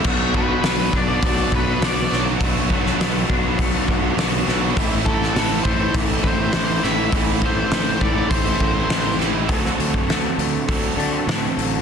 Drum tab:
CC |x---------------|----------------|----------------|----------------|
HH |----o---o---o---|o---o---o---o---|o---o---o---o---|o---o---o---o---|
SD |----o-------o-o-|---oo-------o-o-|---oo-------o-o-|----o-------o-o-|
BD |o-o---o-o-o-----|o-o---o-o-o-----|o-o---o-o-o-----|o-o---o-o-o-----|

CC |----------------|
HH |o-o-o-o-o-o-o-o-|
SD |-o--o-------o---|
BD |o--o----o-------|